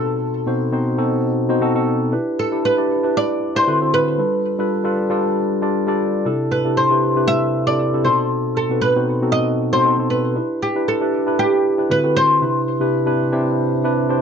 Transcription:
Already playing: B2 C4 D#4 F#4 A4
0.46 B2 C4 D#4 F#4 C5
0.72 B2 C4 D#4 F#4 C5
0.98 B2 C4 D#4 F#4 A4
1.49 B2 C4 D#4 F#4 C5
1.61 B2 C4 D#4 F#4 A4
1.75 B2 C4 D#4 F#4 A4
2.12 D4 E4 G4 B4
2.39 A4
2.52 D4 E4 G4 D5
2.65 B4
2.77 D4 E4 G4 D5
3.03 D4 E4 G4 B4
3.17 D5
3.55 D4 E4 G4 B4 C5
3.67 D3 C4 E4 F#4 A4 B4
3.81 D3 C4 E4 F#4 A4 C5
3.94 B4
4.18 G3 D4 F4 A4 B4
4.59 G3 D4 F4 A4 B4
4.84 G3 D4 F4 A4 B4
5.10 G3 D4 F4 A4 D5
5.61 G3 D4 F4 A4 D5
5.87 G3 D4 F4 A4 D5
6.25 C3 D4 E4 G4 A4
6.51 B4
6.65 C3 D4 E4 G4 A4
6.77 C5
6.90 C3 D4 E4 G4 B4
7.15 C3 D4 E4 G4 B4
7.28 E5
7.67 C3 D4 E4 G4 A4 D5
7.93 C3 D4 E4 G4 A4
8.05 B2 C4 D#4 F#4 A4 C5
8.57 A4
8.70 B2 C4 D#4 F#4 B4
8.81 B4
8.95 B2 C4 D#4 F#4 C5
9.22 B2 C4 D#4 F#4 A4
9.32 D#5
9.72 B2 C4 D#4 F#4 A4 C5
9.85 B2 C4 D#4 F#4 A4
9.98 B2 C4 D#4 F#4 A4
10.10 B4
10.36 D4 E4 G4 B4
10.62 G4
10.75 D4 E4 G4 B4
10.88 A4
11.01 D4 E4 G4 B4
11.26 D4 E4 G4 B4
11.39 G4
11.78 D4 E4 G4 B4
11.89 D3 C4 E4 F#4 A4 B4
12.03 D3 C4 E4 F#4 A4 B4
12.17 C5
12.41 C3 D4 E4 G4 B4
12.80 C3 D4 E4 G4 B4
13.06 C3 D4 E4 G4 B4
13.32 C3 D4 E4 G4 C5
13.84 C3 D4 E4 G4 B4
14.09 C3 D4 E4 G4 C5

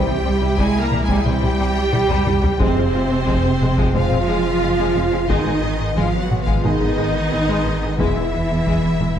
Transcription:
Already playing: C2 E3 G3 C4 E4 G4 C5 G5
0.08 C2 G3 C4
0.24 C2 G3 C4
0.41 C2 G3
0.58 C2 C3 G3 G#3 G#4 G#5, taiko
0.80 A#3 A#4 A#5
0.92 C2 E3 G3, taiko mid
1.03 G#3 G#4 G#5
1.08 C2 C3 G3, taiko
1.25 C2 E3 G3 C4 G4 C5 G5, taiko mid
1.42 C2 G3, taiko mid
1.59 C2 C3 G3
1.93 C2 E3 G3, taiko mid
2.10 C2 C3 G3, taiko low-mid
2.26 C2 G3, taiko low-mid
2.43 C2 G3, taiko low
2.60 F1 C3 F3 G#3 C4 C5, taiko
2.76 F1 G#3 F4
2.94 F1 G#3 F4
3.11 F1 G#3 C4
3.27 F1 F3 G#3, taiko
3.61 F1 G#3, taiko mid
3.78 F1 F3 G#3, taiko
3.94 F1 F3 G#3 C4 F4 C5 F5, taiko mid
4.11 F1 G#3 C4, taiko mid
4.28 F1 F3 G#3
4.62 F1 G#3
4.78 F1 F3 G#3
4.95 F1 G#3 C4
5.12 F1 G#3 C4
5.28 G#1 D#3 G#3 B3 D#4 G#4 D#5, taiko
5.46 G#1 G#3 G#4
5.62 G#1 G#3 G#4
5.79 G#1 G#3 D#4
5.96 G#1 F3 G#3 F4 F5, taiko
6.19 F#3 F#4 F#5
6.30 G#1 G#3 B3, taiko mid
6.42 F3 F4 F5
6.47 G#1 G#3, taiko
6.63 G#1 D#3 G#3 B3 D#4 G#4 D#5, taiko mid
6.80 G#1 G#3 D#4, taiko mid
6.97 G#1 G#3
7.31 G#1 G#3 B3
7.48 G#1 G#3
7.65 G#1 G#3 D#4
7.82 G#1 G#3 D#4
7.98 E1 E2 B2 E3 G#3 B3 E4 G#4 E5, taiko
8.16 E2 G#3 E4
8.33 E2 G#3 E4
8.50 E2 G#3 B3
8.66 E2 E3 G#3, taiko
9.00 E2 G#3, taiko mid

